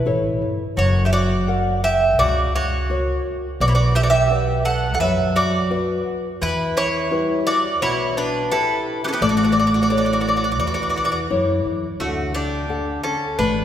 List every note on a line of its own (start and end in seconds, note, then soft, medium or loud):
0.00 0.37 E4 medium
0.00 0.38 B4 medium
0.06 0.38 A1 medium
0.06 0.63 E4 soft
0.06 0.63 A4 soft
0.06 0.63 C#5 medium
0.42 0.74 G1 medium
0.76 2.19 F#1 loud
0.76 1.46 F#3 medium
0.76 1.04 F#4 medium
0.76 1.06 C#5 medium
1.05 1.12 G4 medium
1.05 1.12 E5 medium
1.13 1.80 F#4 medium
1.13 1.80 D5 medium
1.48 2.05 A#4 soft
1.48 2.05 F#5 soft
1.84 2.17 G4 medium
1.84 2.19 E5 medium
2.19 3.18 C#2 medium
2.19 2.88 C#3 medium
2.19 2.52 F#4 medium
2.19 2.52 D5 medium
2.55 3.22 F#4 medium
2.55 3.22 C#5 medium
2.90 3.46 F#4 soft
2.90 3.46 A#4 soft
2.90 3.47 C#5 medium
3.60 5.01 B1 loud
3.60 4.29 B3 medium
3.60 3.68 F#4 medium
3.60 3.67 D5 medium
3.68 3.75 E4 medium
3.68 3.74 C#5 medium
3.75 3.94 F#4 medium
3.75 3.94 D5 medium
3.95 4.02 G4 medium
3.95 4.02 E5 medium
4.03 4.10 F#4 medium
4.03 4.09 D5 medium
4.10 4.62 G4 medium
4.10 4.62 E5 loud
4.30 4.87 B4 soft
4.30 4.87 D5 medium
4.30 4.87 F#5 soft
4.65 4.92 A4 medium
4.65 4.93 F#5 medium
4.94 5.00 A4 medium
4.94 5.00 F#5 medium
5.00 5.99 F#2 loud
5.00 5.69 F#3 medium
5.00 5.33 B4 medium
5.00 5.33 E5 medium
5.36 6.02 F#4 medium
5.36 6.03 D5 medium
5.70 6.27 F#4 medium
5.70 6.27 B4 medium
5.70 6.28 D5 medium
6.41 7.82 E2 loud
6.41 7.10 E3 medium
6.41 6.74 E4 medium
6.41 6.75 B4 loud
6.77 7.43 E4 medium
6.77 7.43 C#5 loud
7.11 7.68 G3 soft
7.11 7.67 E4 medium
7.11 7.68 B4 medium
7.47 7.80 F#4 medium
7.47 7.82 D5 loud
7.82 8.80 B1 medium
7.82 8.50 B2 medium
7.82 8.15 E4 medium
7.82 8.17 C#5 medium
8.17 8.50 D4 medium
8.17 8.53 B4 medium
8.51 9.07 E4 medium
8.51 9.01 E4 medium
8.51 9.07 G4 soft
8.51 9.00 A4 loud
8.51 9.08 B4 medium
9.04 9.07 B3 medium
9.04 9.12 C#4 medium
9.04 9.08 G4 medium
9.08 9.13 A4 medium
9.13 9.21 B3 medium
9.13 9.21 G4 medium
9.21 10.61 A1 medium
9.21 9.89 A3 medium
9.21 9.29 A4 medium
9.21 9.28 D5 medium
9.29 9.36 F#4 medium
9.29 9.36 D5 medium
9.37 9.42 F#4 medium
9.37 9.43 D5 medium
9.43 9.51 F#4 medium
9.43 9.51 D5 medium
9.52 9.58 F#4 medium
9.52 9.58 D5 medium
9.59 9.66 F#4 soft
9.59 9.66 D5 medium
9.67 9.74 F#4 soft
9.67 9.73 D5 medium
9.74 9.81 F#4 soft
9.74 9.82 D5 medium
9.82 9.89 F#4 soft
9.82 9.89 D5 medium
9.90 10.47 E4 soft
9.90 9.96 F#4 soft
9.90 10.47 A4 soft
9.90 10.47 C#5 medium
9.90 9.97 D5 medium
9.97 10.03 F#4 medium
9.97 10.05 D5 medium
10.05 10.11 F#4 soft
10.05 10.12 D5 medium
10.13 10.19 F#4 medium
10.13 10.20 D5 medium
10.21 10.26 F#4 soft
10.21 10.27 D5 medium
10.27 10.35 F#4 soft
10.27 10.35 D5 medium
10.36 10.43 F#4 soft
10.36 10.43 D5 soft
10.44 10.51 F#4 soft
10.44 10.50 D5 medium
10.52 10.58 F#4 soft
10.52 10.58 D5 medium
10.60 11.10 E2 medium
10.60 11.28 E3 medium
10.60 10.66 F#4 soft
10.60 10.66 D5 medium
10.67 10.73 F#4 soft
10.67 10.73 D5 medium
10.74 10.81 F#4 medium
10.74 10.81 D5 medium
10.82 10.88 F#4 soft
10.82 10.89 D5 soft
10.89 10.95 F#4 medium
10.89 10.96 D5 medium
10.96 11.03 F#4 soft
10.96 11.04 D5 medium
11.04 11.11 F#4 medium
11.04 11.10 D5 medium
11.12 11.19 F#4 soft
11.12 11.18 D5 medium
11.30 11.62 F#2 medium
11.30 11.86 E4 soft
11.30 11.86 A4 soft
11.30 11.86 C#5 medium
11.65 11.97 E2 medium
12.00 12.97 D2 medium
12.00 12.67 D3 medium
12.00 12.32 A3 medium
12.00 12.32 F#4 medium
12.34 13.00 D4 medium
12.34 13.03 G4 medium
12.69 13.25 D3 soft
12.69 13.25 A4 medium
12.69 13.25 F#5 soft
13.04 13.36 C#4 medium
13.04 13.40 A4 medium
13.39 13.63 A1 medium
13.39 13.65 A3 medium
13.39 13.65 D4 medium
13.39 13.65 B4 medium